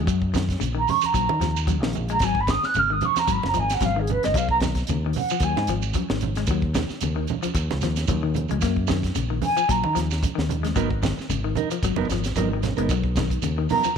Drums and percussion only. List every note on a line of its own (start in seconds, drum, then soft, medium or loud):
0.07 kick medium
0.07 closed hi-hat medium
0.07 shekere medium
0.22 kick medium
0.34 kick medium
0.34 snare medium
0.34 closed hi-hat medium
0.34 high conga medium
0.34 shekere medium
0.49 kick medium
0.49 snare soft
0.49 closed hi-hat medium
0.49 shekere soft
0.61 closed hi-hat medium
0.61 shekere medium
0.88 open hi-hat medium
0.88 high conga medium
0.88 low conga medium
0.88 shekere soft
1.02 closed hi-hat soft
1.02 high conga medium
1.02 shekere medium
1.14 kick medium
1.14 closed hi-hat medium
1.14 shekere medium
1.29 high conga medium
1.41 snare soft
1.41 closed hi-hat soft
1.41 shekere medium
1.57 shekere medium
1.67 kick medium
1.67 closed hi-hat medium
1.67 high conga medium
1.67 shekere medium
1.83 snare medium
1.93 closed hi-hat medium
1.93 low conga medium
1.93 shekere soft
2.09 closed hi-hat soft
2.09 shekere soft
2.19 kick medium
2.19 snare soft
2.19 closed hi-hat medium
2.19 shekere medium
2.35 kick medium
2.47 kick medium
2.47 snare medium
2.47 closed hi-hat soft
2.47 high conga medium
2.47 shekere medium
2.63 snare soft
2.63 shekere soft
2.74 closed hi-hat medium
2.74 shekere medium
3.01 closed hi-hat soft
3.01 high conga medium
3.01 low conga medium
3.01 shekere soft
3.16 snare soft
3.16 closed hi-hat medium
3.16 high conga medium
3.16 shekere medium
3.28 kick medium
3.28 closed hi-hat medium
3.28 shekere medium
3.43 snare soft
3.43 high conga medium
3.54 closed hi-hat soft
3.54 shekere medium
3.70 snare soft
3.70 closed hi-hat medium
3.70 shekere medium
3.80 kick medium
3.80 snare soft
3.80 closed hi-hat medium
3.80 high conga medium
3.80 low conga medium
3.80 shekere medium
4.07 closed hi-hat medium
4.07 high conga medium
4.07 low conga medium
4.07 shekere soft
4.23 snare soft
4.23 closed hi-hat soft
4.23 shekere soft
4.34 kick medium
4.34 closed hi-hat medium
4.34 shekere medium
4.49 kick medium
4.60 kick medium
4.60 snare medium
4.60 closed hi-hat soft
4.60 high conga medium
4.60 shekere medium
4.75 kick medium
4.75 snare soft
4.75 closed hi-hat soft
4.75 shekere soft
4.87 closed hi-hat medium
4.87 shekere medium
5.13 open hi-hat medium
5.13 high conga medium
5.13 low conga medium
5.13 shekere soft
5.29 closed hi-hat medium
5.29 shekere medium
5.40 kick medium
5.40 closed hi-hat medium
5.40 shekere medium
5.57 snare soft
5.57 high conga medium
5.67 closed hi-hat medium
5.67 shekere medium
5.82 shekere medium
5.94 kick medium
5.94 closed hi-hat medium
5.94 high conga medium
5.94 shekere medium
6.10 snare medium
6.21 closed hi-hat soft
6.21 high conga medium
6.21 low conga medium
6.21 shekere soft
6.35 snare soft
6.35 closed hi-hat soft
6.35 shekere soft
6.47 kick medium
6.47 closed hi-hat medium
6.47 shekere medium
6.62 kick medium
6.74 kick medium
6.74 snare medium
6.74 closed hi-hat soft
6.74 high conga medium
6.74 low conga medium
6.74 shekere medium
6.89 snare soft
6.89 shekere soft
7.01 closed hi-hat medium
7.01 shekere medium
7.27 closed hi-hat soft
7.27 high conga medium
7.27 low conga medium
7.27 shekere soft
7.43 closed hi-hat medium
7.43 high conga medium
7.43 shekere medium
7.55 kick medium
7.55 closed hi-hat medium
7.55 shekere medium
7.71 snare soft
7.71 high conga medium
7.81 snare soft
7.81 closed hi-hat soft
7.81 shekere medium
7.96 snare soft
7.96 closed hi-hat medium
7.96 shekere medium
8.07 kick medium
8.07 closed hi-hat medium
8.07 high conga medium
8.07 low conga medium
8.07 shekere medium
8.34 closed hi-hat medium
8.34 high conga medium
8.34 low conga medium
8.34 shekere soft
8.49 closed hi-hat soft
8.49 high conga medium
8.49 shekere soft
8.61 kick medium
8.61 snare soft
8.61 closed hi-hat medium
8.61 shekere medium
8.76 kick medium
8.87 kick medium
8.87 snare medium
8.87 closed hi-hat soft
8.87 high conga medium
8.87 shekere medium
9.03 kick medium
9.03 snare soft
9.03 closed hi-hat medium
9.03 shekere soft
9.15 closed hi-hat medium
9.15 shekere loud
9.42 open hi-hat medium
9.42 high conga medium
9.42 low conga medium
9.42 shekere soft
9.57 closed hi-hat medium
9.57 shekere medium
9.69 kick medium
9.69 closed hi-hat medium
9.69 shekere medium
9.84 high conga medium
9.96 snare soft
9.96 closed hi-hat medium
9.96 shekere medium
10.11 snare soft
10.11 shekere medium
10.23 kick medium
10.23 closed hi-hat medium
10.23 high conga medium
10.23 low conga medium
10.23 shekere loud
10.39 snare medium
10.49 closed hi-hat medium
10.49 high conga medium
10.49 low conga medium
10.49 shekere soft
10.64 snare soft
10.64 closed hi-hat soft
10.64 high conga medium
10.64 shekere soft
10.76 kick medium
10.76 closed hi-hat medium
10.76 shekere medium
10.90 kick medium
11.03 kick medium
11.03 snare medium
11.03 closed hi-hat soft
11.03 high conga medium
11.03 shekere medium
11.19 snare soft
11.19 shekere soft
11.30 closed hi-hat medium
11.30 shekere loud
11.55 closed hi-hat soft
11.55 high conga medium
11.55 low conga medium
11.55 shekere soft
11.71 closed hi-hat medium
11.71 shekere medium
11.83 kick medium
11.83 closed hi-hat medium
11.83 shekere medium
11.96 high conga medium
12.10 snare soft
12.10 closed hi-hat soft
12.10 shekere medium
12.24 snare soft
12.24 closed hi-hat medium
12.24 shekere medium
12.36 kick medium
12.36 closed hi-hat medium
12.36 high conga medium
12.36 shekere medium
12.63 snare soft
12.63 closed hi-hat medium
12.63 high conga medium
12.63 low conga medium
12.63 shekere soft
12.77 closed hi-hat soft
12.77 shekere soft
12.89 kick medium
12.89 closed hi-hat medium
12.89 shekere medium
13.04 kick medium
13.16 kick medium
13.16 snare medium
13.16 closed hi-hat soft
13.16 high conga medium
13.16 low conga medium
13.16 shekere medium
13.30 kick medium
13.30 closed hi-hat soft
13.30 shekere soft
13.42 closed hi-hat medium
13.42 shekere loud
13.69 open hi-hat medium
13.69 high conga medium
13.69 low conga medium
13.69 shekere soft
13.84 closed hi-hat medium
13.84 high conga medium
13.84 shekere medium